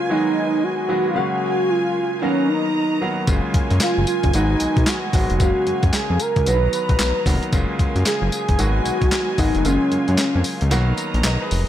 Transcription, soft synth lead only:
Already playing: F4
0.11 D#4
0.64 F#4
1.10 F4
1.17 F#4
1.70 F4
2.22 C#4
2.49 D#4
3.81 F4
4.08 F4
4.34 D#4
4.88 F#4
5.40 F#4
5.94 G#4
6.21 A#4
6.47 B4
6.74 B4
8.06 G#4
8.34 G#4
8.60 F#4
9.39 D#4
9.66 C#4

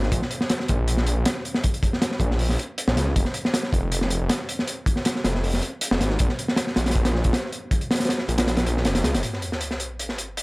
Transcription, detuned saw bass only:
Already playing: G#1
0.12 A#1
0.69 A#1
1.17 A#1
2.20 A#1
2.88 A#1
2.97 C#2
3.16 F1
3.73 F1
4.21 F1
5.25 F1
5.91 F1
6.01 G#1
6.20 A#1
6.77 A#1
7.25 A#1
8.29 A#1
8.66 A#1
8.85 F1
9.04 C#2
9.14 F1

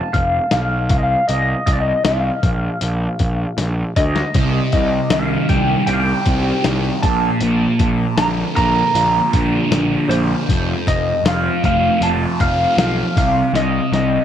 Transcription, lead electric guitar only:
Already playing: A5
0.13 F5
0.52 F5
0.91 F5
0.98 D#5
1.03 F5
1.28 D#5
1.66 D#5
1.73 D5
1.80 D#5
2.05 F5
3.97 D#5
4.73 D#5
5.12 F5
5.49 G5
5.87 G5
5.93 F5
6.00 G5
7.03 A5
8.18 A#5
8.56 A#5
10.09 C5
10.88 D#5
11.28 F5
11.65 F5
12.03 A5
12.41 F5
12.79 F5
13.18 F5
13.56 D#5
13.94 D#5

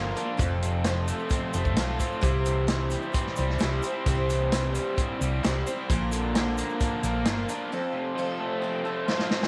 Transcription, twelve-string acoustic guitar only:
Already playing: A#2 D3 F3 A#3 D4 A#4
0.16 F3 A#3 D4 A#4
0.37 F3 C4 F4 A4
0.85 F3 C4 F4 A4
1.32 F3 C4 F4 A4
1.53 C4 F4 A4
1.77 F3 C4 F4 A4
1.99 C4 F4 A4
2.21 C3 G3 C4 E4 C5
2.67 C3 G3 C4 E4 C5
3.12 G3 C4 E4 C5
3.36 C4 E4 C5
3.60 C3 G3 C4 E4 C5
3.83 C4 E4 C5
4.06 C3 G3 C4 E4 C5
4.54 C3 G3 C4 E4 C5
4.97 G3 C4 E4 C5
5.21 C4 E4 C5
5.43 C3 G3 C4 E4 C5
5.66 C4 E4 C5
5.90 A#2 D3 F3 A#3 D4 A#4
6.35 A#2 D3 F3 A#3 D4 A#4
6.81 F3 A#3 D4 A#4
7.05 F3 A#3 D4 A#4
7.27 A#2 D3 F3 A#3 D4 A#4
7.49 F3 A#3 D4 A#4
7.72 F3 C4 F4 A4
8.18 F3 C4 F4 A4
8.62 F3 C4 F4 A4
8.85 C4 F4 A4
9.08 F3 C4 F4 A4
9.29 C4 F4 A4

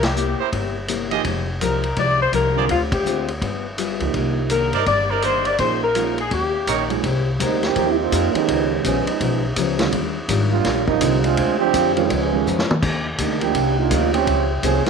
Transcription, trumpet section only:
0.39 E4 G4 A#4 C5
1.11 F4 G4 G#4 D#5
2.55 F4 G#4 C5 D5
4.73 D#4 A#4 C5 D5
5.09 D#4 A#4 C5 D5
6.67 D#4 G4 A#4 C#5

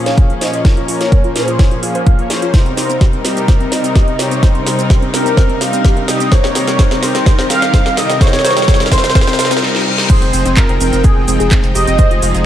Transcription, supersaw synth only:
Already playing: A#2 F3 A#3 C#4 G#4
0.65 A#2 F3 A#3 C#4 A#4
1.36 A#2 F3 A#3 C#4 G#4
2.19 A#2 F3 A#3 C#4 C#5
2.30 F3 A#3 C#4 C5
2.54 C3 G3 C4 D#4 A#4
3.25 C3 G3 C4 D#4 G4
3.48 C3 G3 C4 D#4 A#4
4.19 C3 G3 C4 D#4 G4
4.43 C3 G3 C4 D#4 A#4
5.14 C3 G3 C4 D#4 G4
5.37 C3 G3 C4 D#4 A#4
6.08 C3 G3 C4 D#4 G4
6.32 C3 G3 A#3 D#4 A#4
6.79 C3 G3 C4 D#4 A#4
7.26 C3 G3 C4 D#4 A#4
7.74 C3 G3 C4 D#4 A#4
8.21 C3 G3 C4 D#4 A#4
8.44 C3 G3 C4 D#4 A#4
8.68 C3 G3 C4 D#4 A#4
8.92 C3 G3 C4 D#4 A#4
9.15 C3 G3 C4 D#4 A#4
9.39 C3 G3 C4 D#4 A#4
9.62 C3 G3 C4 D#4 A#4
9.86 C3 G3 C4 D#4 A#4
10.10 F3 C4 D#4 G#4
10.81 F3 C4 D#4 G5
11.99 F3 C4 D#4 G#4

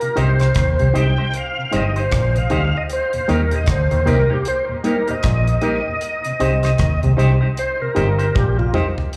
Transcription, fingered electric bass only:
0.18 C2
0.56 D#2
0.81 C2
0.96 C2
1.74 G1
2.13 A#1
2.52 D2
3.30 D#2
3.68 D2
3.92 D#2
4.07 C2
5.24 A#1
6.41 C2
6.79 D#2
7.04 C2
7.19 C2
7.97 G1
8.36 A#1

